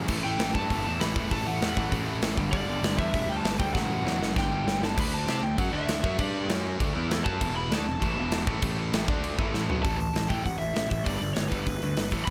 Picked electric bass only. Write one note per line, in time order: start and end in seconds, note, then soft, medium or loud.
0.09 0.23 A1 loud
0.25 0.38 A1 medium
0.39 0.53 A1 loud
0.55 0.69 G2 medium
0.71 0.84 G1 loud
0.86 1.00 E2 medium
1.02 1.15 A1 medium
1.16 1.29 E1 medium
1.31 1.45 A1 medium
1.47 1.60 A1 medium
1.61 1.75 E2 medium
1.77 1.91 A1 loud
1.92 2.20 A1 loud
2.21 2.35 A1 medium
2.38 2.52 G1 medium
2.53 2.66 G1 loud
2.67 2.81 G1 loud
2.81 2.96 G1 loud
2.98 3.12 E2 medium
3.14 3.27 E1 loud
3.28 3.42 D2 loud
3.43 3.58 G1 medium
3.59 3.73 D2 medium
3.75 3.88 A1 loud
3.88 4.03 A1 medium
4.04 4.18 E2 loud
4.19 4.34 F#1 medium
4.36 4.64 G1 loud
4.66 4.80 G1 medium
4.80 4.95 G1 medium
4.97 5.25 D2 loud
5.27 5.41 C3 loud
5.42 5.56 D2 medium
5.58 5.71 F#2 loud
5.72 6.01 D2 loud
6.04 6.18 F#2 medium
6.19 6.47 G2 loud
6.48 6.77 F#2 loud
6.80 6.94 D2 loud
6.96 7.24 E2 loud
7.25 7.40 F#2 medium
7.41 7.69 E1 loud
7.72 7.85 D2 loud
7.87 8.01 E1 medium
8.03 8.16 A1 loud
8.17 8.45 E1 loud
8.47 8.61 A1 medium
8.62 8.90 A1 loud
8.93 9.07 A1 loud
9.08 9.36 D2 medium
9.39 9.53 A1 loud
9.54 9.68 A1 medium
9.70 9.83 B1 loud
9.85 10.07 A1 medium
10.15 10.26 A1 medium
10.30 10.41 A1 medium
10.46 10.57 A1 medium
10.60 10.71 A1 loud
10.76 10.87 A1 medium
10.91 11.02 A1 medium
11.07 11.17 G1 medium
11.21 11.32 G1 medium
11.36 11.47 G1 loud
11.52 11.63 G1 medium
11.67 11.78 G1 medium
11.83 11.93 D2 medium
11.98 12.08 G1 medium
12.12 12.23 A1 medium
12.27 12.30 A1 loud